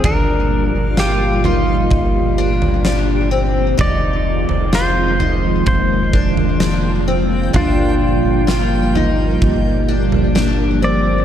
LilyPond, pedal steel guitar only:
\new Staff \with { instrumentName = "Pedal steel guitar" } { \time 4/4 \key g \phrygian \tempo 4 = 64 bes'4 g'8 f'2 r8 | d''4 c''4 c''4. r8 | f'2. r8 d''8 | }